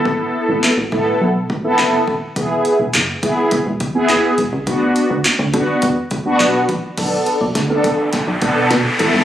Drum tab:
CC |--------|--------|--------|x-------|
HH |--------|xxxxxxxx|xxxxxxxx|xxxxxxxx|
CP |--x---x-|--x---x-|--x---x-|--------|
SD |--o---o-|--o---o-|--o---o-|o-o-o-o-|
BD |o--o-o-o|o--ooo--|o--ooo-o|o--ooo--|